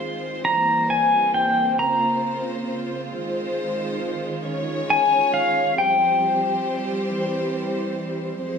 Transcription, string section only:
0, 0, Header, 1, 2, 480
1, 0, Start_track
1, 0, Tempo, 888889
1, 236, Time_signature, 6, 3, 24, 8
1, 4636, End_track
2, 0, Start_track
2, 0, Title_t, "String section"
2, 0, Program_c, 0, 48
2, 0, Note_on_c, 0, 51, 54
2, 0, Note_on_c, 0, 56, 54
2, 0, Note_on_c, 0, 60, 52
2, 0, Note_on_c, 0, 65, 53
2, 0, Note_on_c, 0, 72, 63
2, 224, Note_off_c, 0, 51, 0
2, 229, Note_off_c, 0, 56, 0
2, 229, Note_off_c, 0, 65, 0
2, 236, Note_on_c, 0, 52, 67
2, 237, Note_on_c, 0, 58, 57
2, 239, Note_on_c, 0, 55, 57
2, 935, Note_off_c, 0, 72, 0
2, 948, Note_off_c, 0, 52, 0
2, 949, Note_off_c, 0, 55, 0
2, 964, Note_on_c, 0, 65, 57
2, 964, Note_on_c, 0, 72, 68
2, 966, Note_on_c, 0, 49, 60
2, 1660, Note_off_c, 0, 58, 0
2, 1671, Note_off_c, 0, 72, 0
2, 1672, Note_off_c, 0, 49, 0
2, 1678, Note_on_c, 0, 51, 69
2, 1679, Note_on_c, 0, 72, 79
2, 1680, Note_on_c, 0, 56, 60
2, 2372, Note_off_c, 0, 60, 0
2, 2386, Note_off_c, 0, 56, 0
2, 2389, Note_off_c, 0, 72, 0
2, 2389, Note_on_c, 0, 61, 54
2, 2391, Note_on_c, 0, 73, 73
2, 2393, Note_on_c, 0, 56, 58
2, 3096, Note_off_c, 0, 65, 0
2, 3101, Note_off_c, 0, 51, 0
2, 3104, Note_off_c, 0, 61, 0
2, 3104, Note_off_c, 0, 73, 0
2, 3105, Note_off_c, 0, 56, 0
2, 3111, Note_on_c, 0, 53, 70
2, 3111, Note_on_c, 0, 67, 61
2, 3113, Note_on_c, 0, 55, 69
2, 3113, Note_on_c, 0, 60, 61
2, 3113, Note_on_c, 0, 72, 77
2, 3825, Note_off_c, 0, 53, 0
2, 3830, Note_on_c, 0, 52, 65
2, 4538, Note_off_c, 0, 67, 0
2, 4539, Note_off_c, 0, 55, 0
2, 4539, Note_off_c, 0, 72, 0
2, 4540, Note_off_c, 0, 60, 0
2, 4545, Note_off_c, 0, 52, 0
2, 4550, Note_on_c, 0, 53, 73
2, 4550, Note_on_c, 0, 60, 62
2, 4551, Note_on_c, 0, 56, 65
2, 4554, Note_on_c, 0, 72, 85
2, 4636, Note_off_c, 0, 53, 0
2, 4636, Note_off_c, 0, 56, 0
2, 4636, Note_off_c, 0, 60, 0
2, 4636, Note_off_c, 0, 72, 0
2, 4636, End_track
0, 0, End_of_file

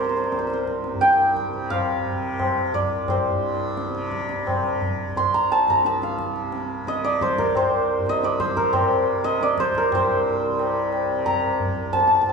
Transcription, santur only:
0, 0, Header, 1, 2, 480
1, 0, Start_track
1, 0, Tempo, 689655
1, 2156, Time_signature, 5, 2, 24, 8
1, 4544, Tempo, 674916
1, 8667, End_track
2, 0, Start_track
2, 0, Title_t, "Santur"
2, 0, Program_c, 0, 15
2, 0, Note_on_c, 0, 70, 81
2, 0, Note_on_c, 0, 74, 86
2, 0, Note_on_c, 0, 77, 75
2, 27, Note_on_c, 0, 72, 48
2, 61, Note_off_c, 0, 72, 0
2, 63, Note_on_c, 0, 72, 49
2, 113, Note_off_c, 0, 72, 0
2, 116, Note_on_c, 0, 72, 45
2, 162, Note_off_c, 0, 72, 0
2, 165, Note_on_c, 0, 72, 41
2, 218, Note_off_c, 0, 72, 0
2, 221, Note_on_c, 0, 72, 41
2, 267, Note_off_c, 0, 72, 0
2, 270, Note_on_c, 0, 72, 52
2, 305, Note_off_c, 0, 77, 0
2, 324, Note_off_c, 0, 72, 0
2, 327, Note_on_c, 0, 72, 43
2, 369, Note_off_c, 0, 72, 0
2, 371, Note_on_c, 0, 72, 47
2, 703, Note_on_c, 0, 79, 101
2, 940, Note_off_c, 0, 74, 0
2, 1185, Note_on_c, 0, 77, 92
2, 1698, Note_off_c, 0, 70, 0
2, 1908, Note_on_c, 0, 74, 78
2, 2143, Note_off_c, 0, 79, 0
2, 2154, Note_off_c, 0, 72, 0
2, 2157, Note_on_c, 0, 72, 68
2, 2730, Note_off_c, 0, 77, 0
2, 3600, Note_on_c, 0, 84, 91
2, 3620, Note_off_c, 0, 74, 0
2, 3718, Note_on_c, 0, 82, 86
2, 3841, Note_on_c, 0, 81, 97
2, 3882, Note_off_c, 0, 82, 0
2, 3966, Note_on_c, 0, 82, 86
2, 3994, Note_off_c, 0, 72, 0
2, 4008, Note_off_c, 0, 81, 0
2, 4078, Note_on_c, 0, 81, 86
2, 4120, Note_off_c, 0, 82, 0
2, 4197, Note_on_c, 0, 77, 66
2, 4795, Note_on_c, 0, 75, 91
2, 4817, Note_off_c, 0, 84, 0
2, 4911, Note_on_c, 0, 74, 81
2, 4954, Note_off_c, 0, 75, 0
2, 5037, Note_on_c, 0, 72, 83
2, 5154, Note_on_c, 0, 70, 67
2, 5197, Note_off_c, 0, 81, 0
2, 5279, Note_off_c, 0, 72, 0
2, 5282, Note_on_c, 0, 72, 72
2, 5656, Note_on_c, 0, 75, 97
2, 5699, Note_off_c, 0, 74, 0
2, 5763, Note_on_c, 0, 74, 82
2, 5769, Note_off_c, 0, 77, 0
2, 5806, Note_off_c, 0, 75, 0
2, 5872, Note_off_c, 0, 72, 0
2, 5875, Note_on_c, 0, 72, 88
2, 5991, Note_off_c, 0, 70, 0
2, 5994, Note_on_c, 0, 70, 78
2, 6105, Note_off_c, 0, 72, 0
2, 6108, Note_on_c, 0, 72, 69
2, 6474, Note_on_c, 0, 75, 95
2, 6517, Note_off_c, 0, 74, 0
2, 6605, Note_on_c, 0, 74, 90
2, 6648, Note_off_c, 0, 75, 0
2, 6725, Note_off_c, 0, 72, 0
2, 6728, Note_on_c, 0, 72, 96
2, 6851, Note_off_c, 0, 70, 0
2, 6854, Note_on_c, 0, 70, 76
2, 6974, Note_off_c, 0, 72, 0
2, 6976, Note_on_c, 0, 72, 74
2, 7908, Note_on_c, 0, 82, 95
2, 8354, Note_off_c, 0, 74, 0
2, 8384, Note_on_c, 0, 81, 86
2, 8427, Note_off_c, 0, 70, 0
2, 8427, Note_off_c, 0, 82, 0
2, 8430, Note_off_c, 0, 81, 0
2, 8432, Note_on_c, 0, 81, 57
2, 8484, Note_off_c, 0, 81, 0
2, 8487, Note_on_c, 0, 81, 64
2, 8538, Note_off_c, 0, 81, 0
2, 8541, Note_on_c, 0, 81, 54
2, 8585, Note_off_c, 0, 81, 0
2, 8588, Note_on_c, 0, 81, 65
2, 8638, Note_off_c, 0, 81, 0
2, 8641, Note_on_c, 0, 81, 56
2, 8667, Note_off_c, 0, 72, 0
2, 8667, Note_off_c, 0, 81, 0
2, 8667, End_track
0, 0, End_of_file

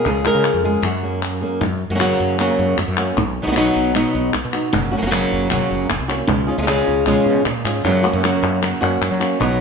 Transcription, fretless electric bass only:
0, 0, Header, 1, 2, 480
1, 0, Start_track
1, 0, Key_signature, 6, "major"
1, 0, Tempo, 389610
1, 70, Time_signature, 4, 2, 24, 8
1, 11836, End_track
2, 0, Start_track
2, 0, Title_t, "Fretless electric bass"
2, 0, Program_c, 0, 35
2, 69, Note_on_c, 0, 37, 89
2, 340, Note_off_c, 0, 37, 0
2, 429, Note_on_c, 0, 49, 85
2, 610, Note_off_c, 0, 49, 0
2, 664, Note_on_c, 0, 41, 78
2, 937, Note_off_c, 0, 41, 0
2, 1015, Note_on_c, 0, 42, 104
2, 1742, Note_off_c, 0, 42, 0
2, 1990, Note_on_c, 0, 42, 91
2, 2261, Note_off_c, 0, 42, 0
2, 2341, Note_on_c, 0, 42, 87
2, 2615, Note_off_c, 0, 42, 0
2, 2711, Note_on_c, 0, 42, 84
2, 3071, Note_off_c, 0, 42, 0
2, 3188, Note_on_c, 0, 42, 85
2, 3369, Note_off_c, 0, 42, 0
2, 3426, Note_on_c, 0, 42, 87
2, 3518, Note_off_c, 0, 42, 0
2, 3547, Note_on_c, 0, 42, 87
2, 3818, Note_off_c, 0, 42, 0
2, 3905, Note_on_c, 0, 35, 98
2, 4177, Note_off_c, 0, 35, 0
2, 4270, Note_on_c, 0, 35, 93
2, 4540, Note_off_c, 0, 35, 0
2, 4632, Note_on_c, 0, 35, 85
2, 4991, Note_off_c, 0, 35, 0
2, 5110, Note_on_c, 0, 35, 87
2, 5290, Note_off_c, 0, 35, 0
2, 5357, Note_on_c, 0, 35, 86
2, 5444, Note_off_c, 0, 35, 0
2, 5478, Note_on_c, 0, 47, 88
2, 5745, Note_off_c, 0, 47, 0
2, 5836, Note_on_c, 0, 30, 98
2, 6103, Note_off_c, 0, 30, 0
2, 6191, Note_on_c, 0, 30, 91
2, 6460, Note_off_c, 0, 30, 0
2, 6552, Note_on_c, 0, 30, 86
2, 6911, Note_off_c, 0, 30, 0
2, 7029, Note_on_c, 0, 30, 89
2, 7209, Note_off_c, 0, 30, 0
2, 7271, Note_on_c, 0, 30, 90
2, 7360, Note_off_c, 0, 30, 0
2, 7384, Note_on_c, 0, 36, 87
2, 7656, Note_off_c, 0, 36, 0
2, 7743, Note_on_c, 0, 37, 96
2, 8015, Note_off_c, 0, 37, 0
2, 8108, Note_on_c, 0, 37, 99
2, 8379, Note_off_c, 0, 37, 0
2, 8474, Note_on_c, 0, 37, 91
2, 8832, Note_off_c, 0, 37, 0
2, 8945, Note_on_c, 0, 47, 82
2, 9163, Note_off_c, 0, 47, 0
2, 9187, Note_on_c, 0, 46, 82
2, 9404, Note_off_c, 0, 46, 0
2, 9421, Note_on_c, 0, 44, 81
2, 9641, Note_off_c, 0, 44, 0
2, 9667, Note_on_c, 0, 42, 97
2, 9938, Note_off_c, 0, 42, 0
2, 10019, Note_on_c, 0, 42, 98
2, 10293, Note_off_c, 0, 42, 0
2, 10382, Note_on_c, 0, 42, 100
2, 10745, Note_off_c, 0, 42, 0
2, 10865, Note_on_c, 0, 42, 92
2, 11046, Note_off_c, 0, 42, 0
2, 11105, Note_on_c, 0, 42, 90
2, 11197, Note_off_c, 0, 42, 0
2, 11225, Note_on_c, 0, 54, 92
2, 11496, Note_off_c, 0, 54, 0
2, 11593, Note_on_c, 0, 35, 102
2, 11836, Note_off_c, 0, 35, 0
2, 11836, End_track
0, 0, End_of_file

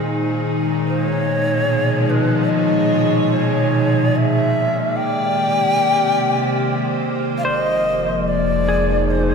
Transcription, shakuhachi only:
0, 0, Header, 1, 2, 480
1, 0, Start_track
1, 0, Tempo, 821918
1, 515, Time_signature, 4, 2, 24, 8
1, 5459, End_track
2, 0, Start_track
2, 0, Title_t, "Shakuhachi"
2, 0, Program_c, 0, 77
2, 509, Note_on_c, 0, 72, 88
2, 603, Note_off_c, 0, 72, 0
2, 603, Note_on_c, 0, 73, 88
2, 1224, Note_on_c, 0, 71, 72
2, 1233, Note_off_c, 0, 73, 0
2, 1459, Note_on_c, 0, 75, 91
2, 1467, Note_off_c, 0, 71, 0
2, 1944, Note_on_c, 0, 73, 83
2, 1953, Note_off_c, 0, 75, 0
2, 2431, Note_on_c, 0, 76, 101
2, 2439, Note_off_c, 0, 73, 0
2, 2901, Note_on_c, 0, 79, 106
2, 2910, Note_off_c, 0, 76, 0
2, 4108, Note_off_c, 0, 79, 0
2, 4309, Note_on_c, 0, 77, 79
2, 4345, Note_on_c, 0, 74, 108
2, 4353, Note_off_c, 0, 77, 0
2, 4421, Note_off_c, 0, 74, 0
2, 4421, Note_on_c, 0, 75, 108
2, 4834, Note_on_c, 0, 74, 102
2, 4842, Note_off_c, 0, 75, 0
2, 5317, Note_on_c, 0, 72, 93
2, 5326, Note_off_c, 0, 74, 0
2, 5459, Note_off_c, 0, 72, 0
2, 5459, End_track
0, 0, End_of_file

